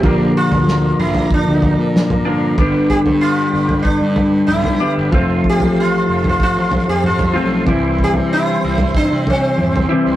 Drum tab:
SD |----o-------o---|----------------|----------------|----------------|
T2 |---o--o------o--|------------o---|------------o---|------------o---|
FT |o--o---o--o--o--|o--o---o--o--o--|o--o---o--o--o--|o--o---o--o--o--|
BD |o-------o-o-----|o-o-----o-------|o-o-----o-------|o-o-----o-------|